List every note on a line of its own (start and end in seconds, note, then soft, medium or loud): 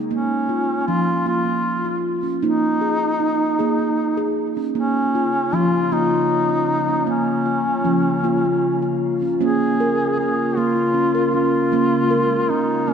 0.11 0.88 A#3 medium
0.11 0.84 C#4 medium
0.49 0.88 F4 medium
0.87 1.21 F3 medium
0.87 1.27 C#4 medium
0.87 1.24 F4 medium
1.26 1.44 A#3 medium
1.26 1.46 F4 medium
1.26 2.01 F4 medium
1.45 1.84 A#3 medium
1.85 2.23 F4 medium
2.23 2.43 C#4 medium
2.43 3.21 A#3 medium
2.43 2.81 D#4 medium
2.43 4.33 D#4 medium
2.81 3.20 G#4 medium
3.20 3.59 D#4 medium
3.59 4.58 A#3 medium
3.59 3.78 G#4 medium
3.79 4.17 D#4 medium
4.17 4.56 G#4 medium
4.57 4.76 C#4 medium
4.75 7.06 C#3 medium
4.75 5.53 A#3 medium
4.75 9.37 A#3 medium
4.75 5.57 C#4 medium
4.75 9.37 F4 medium
5.15 5.53 F4 medium
5.53 5.86 F3 medium
5.53 5.92 C#4 medium
5.53 5.94 F4 medium
5.92 6.10 A#3 medium
5.92 7.09 D#4 medium
5.92 6.11 F4 medium
6.11 6.50 A#3 medium
6.49 6.88 F4 medium
6.88 7.08 C#4 medium
7.07 9.38 C#3 medium
7.07 7.85 A#3 medium
7.07 8.99 C#4 medium
7.46 7.85 F4 medium
7.84 8.18 F3 medium
7.84 8.24 C#4 medium
8.24 8.43 A#3 medium
8.24 8.44 F4 medium
8.82 9.21 F4 medium
9.22 9.40 C#4 medium
9.41 12.94 C#3 medium
9.41 10.39 A#3 medium
9.41 11.72 A#3 medium
9.41 9.80 C#4 medium
9.41 12.94 F4 medium
9.41 10.15 G#4 medium
9.80 10.19 A#4 medium
10.18 10.57 C#4 medium
10.18 10.59 G#4 medium
10.57 11.56 A#3 medium
10.57 11.34 F4 medium
10.76 10.95 F4 medium
10.94 11.14 C#4 medium
11.15 11.34 A#4 medium
11.34 11.71 C#4 medium
11.34 12.52 F4 medium
11.72 12.94 G#3 medium
11.72 12.72 A#3 loud
11.72 12.11 C#4 medium
12.10 12.50 A#4 medium
12.50 12.89 C#4 medium
12.50 12.92 D#4 medium
12.88 12.94 A#3 medium
12.88 12.94 C#4 medium